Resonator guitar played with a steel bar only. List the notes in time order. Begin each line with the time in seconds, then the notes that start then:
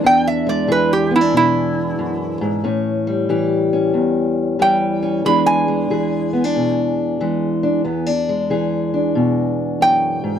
0.06 G5
0.27 E5
0.49 D5
0.72 B4
0.93 G4
1.16 E4
1.37 E4
4.62 G5
5.26 B5
5.46 G#5
9.82 G5